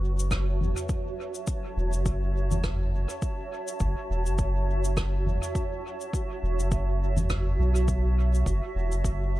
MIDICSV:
0, 0, Header, 1, 4, 480
1, 0, Start_track
1, 0, Key_signature, 3, "minor"
1, 0, Tempo, 582524
1, 1214, Time_signature, 4, 2, 24, 8
1, 7745, End_track
2, 0, Start_track
2, 0, Title_t, "Ambient pad"
2, 0, Program_c, 0, 92
2, 0, Note_on_c, 0, 66, 79
2, 0, Note_on_c, 0, 71, 83
2, 0, Note_on_c, 0, 73, 72
2, 0, Note_on_c, 0, 76, 76
2, 0, Note_on_c, 0, 81, 69
2, 549, Note_off_c, 0, 71, 0
2, 7354, Note_on_c, 0, 71, 80
2, 7632, Note_off_c, 0, 73, 0
2, 7745, Note_off_c, 0, 66, 0
2, 7745, Note_off_c, 0, 71, 0
2, 7745, Note_off_c, 0, 76, 0
2, 7745, Note_off_c, 0, 81, 0
2, 7745, End_track
3, 0, Start_track
3, 0, Title_t, "Sub bass"
3, 0, Program_c, 1, 38
3, 0, Note_on_c, 1, 30, 89
3, 606, Note_off_c, 1, 30, 0
3, 1454, Note_on_c, 1, 28, 85
3, 1594, Note_on_c, 1, 30, 89
3, 1606, Note_off_c, 1, 28, 0
3, 2526, Note_off_c, 1, 30, 0
3, 3134, Note_on_c, 1, 30, 102
3, 3255, Note_off_c, 1, 30, 0
3, 3377, Note_on_c, 1, 28, 88
3, 3514, Note_on_c, 1, 30, 95
3, 3527, Note_off_c, 1, 28, 0
3, 4446, Note_off_c, 1, 30, 0
3, 5295, Note_on_c, 1, 28, 87
3, 5429, Note_on_c, 1, 30, 96
3, 5442, Note_off_c, 1, 28, 0
3, 6247, Note_off_c, 1, 30, 0
3, 6252, Note_on_c, 1, 35, 101
3, 6953, Note_off_c, 1, 35, 0
3, 6971, Note_on_c, 1, 30, 98
3, 7094, Note_off_c, 1, 30, 0
3, 7211, Note_on_c, 1, 28, 83
3, 7349, Note_on_c, 1, 30, 90
3, 7361, Note_off_c, 1, 28, 0
3, 7745, Note_off_c, 1, 30, 0
3, 7745, End_track
4, 0, Start_track
4, 0, Title_t, "Drums"
4, 158, Note_on_c, 9, 69, 66
4, 240, Note_off_c, 9, 69, 0
4, 255, Note_on_c, 9, 36, 108
4, 256, Note_on_c, 9, 69, 61
4, 262, Note_on_c, 9, 37, 86
4, 337, Note_off_c, 9, 36, 0
4, 338, Note_off_c, 9, 69, 0
4, 344, Note_off_c, 9, 37, 0
4, 497, Note_on_c, 9, 45, 52
4, 579, Note_off_c, 9, 45, 0
4, 633, Note_on_c, 9, 69, 60
4, 715, Note_off_c, 9, 69, 0
4, 732, Note_on_c, 9, 69, 56
4, 735, Note_on_c, 9, 36, 102
4, 814, Note_off_c, 9, 69, 0
4, 817, Note_off_c, 9, 36, 0
4, 1109, Note_on_c, 9, 69, 58
4, 1191, Note_off_c, 9, 69, 0
4, 1210, Note_on_c, 9, 69, 62
4, 1215, Note_on_c, 9, 36, 111
4, 1292, Note_off_c, 9, 69, 0
4, 1297, Note_off_c, 9, 36, 0
4, 1590, Note_on_c, 9, 69, 60
4, 1672, Note_off_c, 9, 69, 0
4, 1695, Note_on_c, 9, 36, 104
4, 1695, Note_on_c, 9, 69, 52
4, 1777, Note_off_c, 9, 36, 0
4, 1777, Note_off_c, 9, 69, 0
4, 2070, Note_on_c, 9, 45, 76
4, 2071, Note_on_c, 9, 69, 67
4, 2152, Note_off_c, 9, 45, 0
4, 2153, Note_off_c, 9, 69, 0
4, 2173, Note_on_c, 9, 37, 99
4, 2173, Note_on_c, 9, 69, 55
4, 2174, Note_on_c, 9, 36, 111
4, 2255, Note_off_c, 9, 37, 0
4, 2255, Note_off_c, 9, 69, 0
4, 2256, Note_off_c, 9, 36, 0
4, 2549, Note_on_c, 9, 69, 61
4, 2632, Note_off_c, 9, 69, 0
4, 2653, Note_on_c, 9, 69, 56
4, 2655, Note_on_c, 9, 36, 107
4, 2736, Note_off_c, 9, 69, 0
4, 2737, Note_off_c, 9, 36, 0
4, 3029, Note_on_c, 9, 69, 67
4, 3112, Note_off_c, 9, 69, 0
4, 3129, Note_on_c, 9, 69, 57
4, 3134, Note_on_c, 9, 36, 108
4, 3211, Note_off_c, 9, 69, 0
4, 3216, Note_off_c, 9, 36, 0
4, 3510, Note_on_c, 9, 69, 65
4, 3593, Note_off_c, 9, 69, 0
4, 3611, Note_on_c, 9, 69, 59
4, 3614, Note_on_c, 9, 36, 113
4, 3693, Note_off_c, 9, 69, 0
4, 3696, Note_off_c, 9, 36, 0
4, 3991, Note_on_c, 9, 69, 67
4, 4074, Note_off_c, 9, 69, 0
4, 4094, Note_on_c, 9, 36, 108
4, 4095, Note_on_c, 9, 69, 62
4, 4098, Note_on_c, 9, 37, 85
4, 4176, Note_off_c, 9, 36, 0
4, 4177, Note_off_c, 9, 69, 0
4, 4180, Note_off_c, 9, 37, 0
4, 4329, Note_on_c, 9, 45, 52
4, 4411, Note_off_c, 9, 45, 0
4, 4474, Note_on_c, 9, 69, 70
4, 4557, Note_off_c, 9, 69, 0
4, 4574, Note_on_c, 9, 36, 106
4, 4576, Note_on_c, 9, 69, 53
4, 4656, Note_off_c, 9, 36, 0
4, 4658, Note_off_c, 9, 69, 0
4, 4951, Note_on_c, 9, 69, 55
4, 5033, Note_off_c, 9, 69, 0
4, 5054, Note_on_c, 9, 36, 112
4, 5060, Note_on_c, 9, 69, 51
4, 5137, Note_off_c, 9, 36, 0
4, 5142, Note_off_c, 9, 69, 0
4, 5434, Note_on_c, 9, 69, 57
4, 5517, Note_off_c, 9, 69, 0
4, 5532, Note_on_c, 9, 69, 59
4, 5534, Note_on_c, 9, 36, 108
4, 5614, Note_off_c, 9, 69, 0
4, 5616, Note_off_c, 9, 36, 0
4, 5905, Note_on_c, 9, 45, 81
4, 5910, Note_on_c, 9, 69, 65
4, 5987, Note_off_c, 9, 45, 0
4, 5992, Note_off_c, 9, 69, 0
4, 6012, Note_on_c, 9, 69, 53
4, 6014, Note_on_c, 9, 36, 110
4, 6015, Note_on_c, 9, 37, 101
4, 6094, Note_off_c, 9, 69, 0
4, 6096, Note_off_c, 9, 36, 0
4, 6097, Note_off_c, 9, 37, 0
4, 6390, Note_on_c, 9, 69, 60
4, 6473, Note_off_c, 9, 69, 0
4, 6493, Note_on_c, 9, 69, 64
4, 6494, Note_on_c, 9, 36, 110
4, 6575, Note_off_c, 9, 69, 0
4, 6576, Note_off_c, 9, 36, 0
4, 6876, Note_on_c, 9, 69, 58
4, 6959, Note_off_c, 9, 69, 0
4, 6973, Note_on_c, 9, 36, 102
4, 6977, Note_on_c, 9, 69, 55
4, 7055, Note_off_c, 9, 36, 0
4, 7059, Note_off_c, 9, 69, 0
4, 7348, Note_on_c, 9, 69, 56
4, 7430, Note_off_c, 9, 69, 0
4, 7452, Note_on_c, 9, 36, 103
4, 7456, Note_on_c, 9, 69, 55
4, 7535, Note_off_c, 9, 36, 0
4, 7539, Note_off_c, 9, 69, 0
4, 7745, End_track
0, 0, End_of_file